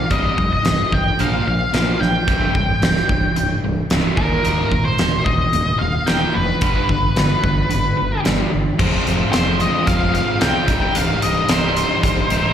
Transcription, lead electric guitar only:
Already playing: F5
0.12 D#5
0.53 D#5
0.94 G5
1.20 F5
1.48 F5
2.00 G5
4.17 A#4
4.85 C5
5.24 D#5
5.79 F5
6.07 G5
6.34 B4
9.33 C5
9.61 D#5
9.87 F5
10.14 F5
10.41 G5
10.82 G5
10.95 F5
11.23 D#5
11.50 C5

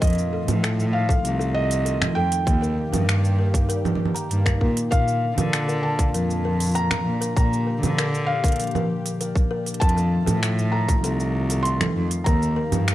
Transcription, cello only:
0.02 F2
0.48 A2
1.24 C2
2.17 F2
2.47 D#2
2.93 G2
4.31 G2
4.61 A#2
4.92 A#2
5.38 D3
6.14 F2
7.06 A#2
7.36 A#2
7.82 D3
9.81 F2
10.27 A2
11.04 C2
11.96 F2
12.26 D#2
12.72 G2

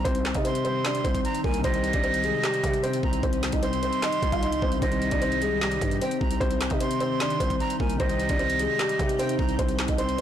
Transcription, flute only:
0.45 C6
1.25 A#5
1.45 G#5
1.64 D#5
2.83 G5
3.03 A#5
3.63 C6
4.82 D#5
6.01 G5
6.21 A#5
6.81 C6
7.60 A#5
7.80 G#5
8.00 D#5
9.19 G5
9.39 A#5
9.98 C6

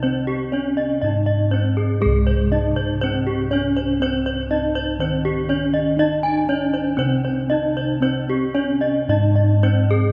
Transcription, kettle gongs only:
Already playing: C3
0.04 C4
0.52 C#4
1.03 G#2
1.51 C#4
2.01 G#4
2.05 C2
2.51 C#4
3.50 C#4
4.00 C4
4.50 C#4
4.99 D#3
5.48 C#4
5.97 D#4
6.47 C#4
6.98 C3
7.48 C#4
8.00 C4
8.55 C#4
9.08 G#2
9.64 C#4

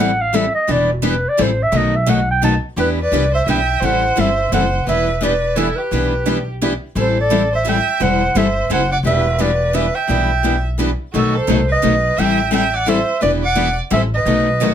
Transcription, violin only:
2.77 G4
3.00 B4
3.34 C5
3.46 E5
3.80 C5
4.15 C5
4.50 C5
4.87 B4
5.19 B4
5.56 E4
5.78 G4
6.98 A4
7.19 A4
7.53 C5
7.66 E5
8.01 C5
8.34 C5
8.70 C5
8.92 D5
9.06 B4
9.40 B4
9.74 B4
9.95 E5
11.13 F#4
11.33 A4
11.68 B4
12.17 E5
12.53 E5
12.74 D5
12.88 C5
13.21 B4
13.43 D5
13.94 C5
14.14 B4

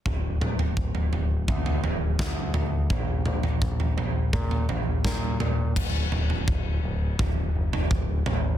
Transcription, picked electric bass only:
0.06 D1
0.41 D1
0.77 D1
1.13 D1
1.48 D2
1.83 D1
2.19 D2
2.54 D2
2.90 A#1
3.27 A#1
3.62 A#1
3.97 A#1
4.33 A#2
4.69 A#1
5.05 A#2
5.40 A#2
5.76 D1
6.12 D1
6.48 D1
6.83 D1
7.19 D1
7.55 F#1
7.91 D1
8.26 A1

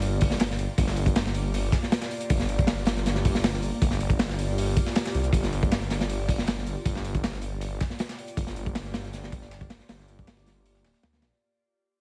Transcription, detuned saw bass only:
Already playing: G1
0.22 G1
0.59 G1
0.78 G1
0.97 G1
2.30 G1
2.49 G1
3.25 G1
3.63 G1
3.82 G1
4.01 G1
5.15 C2
5.33 G1
5.53 G1
6.29 G1
6.66 G1
6.85 G1
7.05 G1
8.37 G1
8.56 G1
9.32 G1
9.70 G1
9.89 G1
10.08 G1
10.84 D1
11.03 D2
11.22 A#1

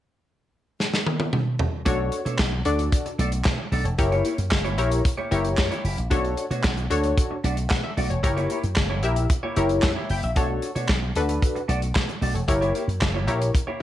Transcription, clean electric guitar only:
1.86 A3 D4 A4 C#5
1.99 muted clean electric guitar stroke
2.12 muted clean electric guitar stroke
2.25 A3 D4 A4 C#5
2.53 muted clean electric guitar stroke
2.79 muted clean electric guitar stroke
3.06 muted clean electric guitar stroke
3.19 A3 D4 A4 D5
3.32 muted clean electric guitar stroke
3.59 muted clean electric guitar stroke
3.72 A3 D4 A4 D5
3.86 muted clean electric guitar stroke
3.99 muted clean electric guitar stroke
4.12 A#3 E4 G4 C#5
4.25 A#3 E4 G4 C#5
4.39 muted clean electric guitar stroke
4.52 muted clean electric guitar stroke
4.65 A#3 E4 G4 C#5
4.78 A#3 E4 G4 E5
4.91 muted clean electric guitar stroke
5.05 muted clean electric guitar stroke
5.18 A#3 E4 G4 C#5
5.31 A#3 E4 G4 E5
5.44 muted clean electric guitar stroke
5.58 muted clean electric guitar stroke
5.71 A#3 E4 G4 C#5
5.84 A#3 E4 G4 E5
5.98 muted clean electric guitar stroke
6.11 A3 D4 F#4 C#5
6.24 muted clean electric guitar stroke
6.38 muted clean electric guitar stroke
6.51 A3 D4 F#4 C#5
6.64 muted clean electric guitar stroke
6.77 muted clean electric guitar stroke
7.04 muted clean electric guitar stroke
7.31 muted clean electric guitar stroke
7.44 A3 D4 F#4 D5
7.57 muted clean electric guitar stroke
7.84 muted clean electric guitar stroke
7.97 A3 D4 F#4 D5
8.11 muted clean electric guitar stroke
8.24 muted clean electric guitar stroke
8.37 A#3 E4 G4 C#5
8.50 A#3 E4 G4 C#5
8.63 muted clean electric guitar stroke
8.77 muted clean electric guitar stroke
8.90 A#3 E4 G4 C#5
9.04 A#3 E4 G4 E5
9.17 muted clean electric guitar stroke
9.30 muted clean electric guitar stroke
9.43 A#3 E4 G4 C#5
9.56 A#3 E4 G4 E5
9.69 muted clean electric guitar stroke
9.96 A#3 E4 G4 C#5
10.09 A#3 E4 G4 E5
10.23 muted clean electric guitar stroke
10.36 A3 D4 F#4 C#5
10.49 muted clean electric guitar stroke
10.62 muted clean electric guitar stroke
10.75 A3 D4 F#4 C#5
10.89 muted clean electric guitar stroke
11.03 muted clean electric guitar stroke
11.29 muted clean electric guitar stroke
11.55 muted clean electric guitar stroke
11.68 A3 D4 F#4 D5
11.82 muted clean electric guitar stroke
12.08 muted clean electric guitar stroke
12.21 A3 D4 F#4 D5
12.35 muted clean electric guitar stroke
12.48 muted clean electric guitar stroke
12.61 A#3 E4 G4 C#5
12.75 A#3 E4 G4 C#5
12.88 muted clean electric guitar stroke
13.01 muted clean electric guitar stroke
13.14 A#3 E4 G4 C#5
13.27 A#3 E4 G4 E5
13.41 muted clean electric guitar stroke
13.54 muted clean electric guitar stroke
13.67 A#3 E4 G4 C#5

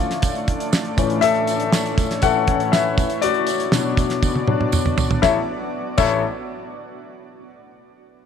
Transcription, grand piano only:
Already playing: D3 F3 A3 F4 D5
0.97 A2 E3 C#4
1.21 A4 E5
2.22 A2 E3 C#4 A4 F#5
2.72 B4 E5
3.22 F#4 D5
3.72 B2 F#3 D4
4.47 B2 F#3 D4
5.22 A1 E4 A4 C#5 E5
5.98 A1 E4 A4 C#5 E5

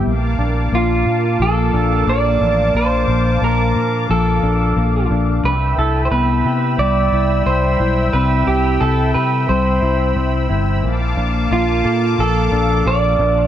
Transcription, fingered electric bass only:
0.05 A#1
0.38 A#1
0.72 A#1
1.06 A#2
1.39 A#1
1.73 A#1
2.07 A#1
2.41 A1
2.74 A#1
3.08 A#1
3.41 A#1
3.75 A#2
4.09 A#1
4.43 A#1
4.76 A#1
5.10 A#1
5.44 C2
5.77 C2
6.11 C2
6.45 C3
6.78 C2
7.12 C2
7.46 C2
7.80 B1
8.13 C2
8.46 C2
8.81 C2
9.15 C3
9.48 C2
9.82 C2
10.16 C2
10.50 G1
10.83 A#1
11.17 A#1
11.51 A#1
11.84 A#2
12.18 A#1
12.51 A#1
12.85 A#1
13.19 A#1

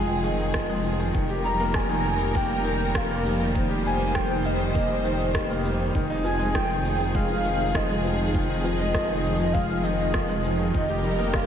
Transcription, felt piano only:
Already playing: D#3 F3 G#3 D#4
0.10 F3
0.24 D#3
0.54 F3
0.69 G#3
0.84 F3
0.99 D#3
1.14 D#3
1.29 G4
1.45 G3
1.60 A#3
1.75 G3
1.89 D#3
2.19 G3
2.35 A#3
2.49 G3
2.64 D#3
2.95 G3
3.09 A#3
3.25 G3
3.40 D#3
3.54 D#3
3.69 G4
3.85 G3
3.99 A#3
4.14 G3
4.29 D#3
4.59 G3
4.74 A#3
4.89 G3
5.04 D#3
5.35 G3
5.50 A#3
5.65 G3
5.80 D#3
5.95 D#3
6.10 D#4
6.25 F3
6.39 G#3
6.55 F3
6.70 D#3
6.99 F3
7.15 G#3
7.30 F3
7.45 D#3
7.75 F3
7.90 G#3
8.04 F3
8.20 D#3
8.35 D#3
8.49 D#4
8.64 F3
8.79 G#3
8.94 F3
9.09 D#3
9.39 F3
9.54 G#3
9.69 F3
9.84 D#3
10.14 F3
10.29 G#3
10.44 F3
10.59 D#3
10.74 D#3
10.88 G4
11.04 G3
11.19 A#3
11.34 G3

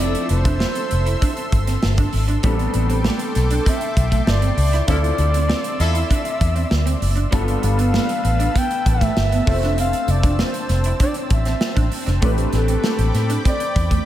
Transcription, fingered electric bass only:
Already playing: F1
0.30 F1
0.92 F1
1.52 G1
1.84 G1
2.13 G#1
2.44 A1
2.74 A1
3.36 B1
3.97 B1
4.27 G1
4.57 C#2
4.88 D2
5.18 D2
5.80 E2
6.41 E2
6.71 D2
7.02 F#1
7.33 G1
7.63 G1
8.24 A1
8.86 A1
9.17 G1
9.47 F1
10.08 F1
10.69 F1
11.31 A1
11.77 A1
12.07 F1
12.22 A1
12.53 A1
12.98 A1
13.14 A2
13.76 E2

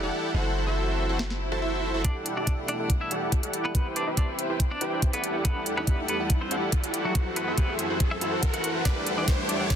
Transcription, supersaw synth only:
0.03 E4 G4 A4 D5 F#5
0.34 E4 F#4 A4 C5 F#5
0.67 E4 F#4 A4 C5 E5
1.09 E4 F#4 A4 C5 F#5
1.52 E4 F#4 A4 C5 A5
1.62 E4 F#4 A4 C5 E5
1.94 E4 F#4 A4 C5 E5
2.04 E4 A4 F#5
2.37 E4 G4 A4 D5 E5
2.80 E4 G4 A4 D5 F#5
3.11 E4 G4 A4 D5 F#5
3.43 E4 G4 A4 D5 F#5
3.75 E4 G4 B4 C5
4.07 E4 G4 B4 C5 E5
4.50 E4 G4 B4 C5 G5
4.81 E4 G4 B4 C5 G5
5.13 E4 G4 A4 D5 F#5
5.45 E4 G4 A4 D5
5.77 E4 G4 A4 D5 E5
6.20 E4 G4 A4 D5 F#5
6.51 E4 G4 A4 D5 F#5
6.84 E4 G4 A4 D5 F#5
7.15 E4 F#4 A4 C5 F#5
7.48 E4 F#4 A4 C5 E5
7.90 E4 F#4 A4 C5 F#5
8.21 E4 F#4 A4 C5 F#5
8.54 E4 F#4 A4 C5 F#5
8.85 E4
9.18 E4 G4 A4 D5 E5
9.60 E4 G4 A4 D5 F#5
9.71 E4 G4 A4 D5

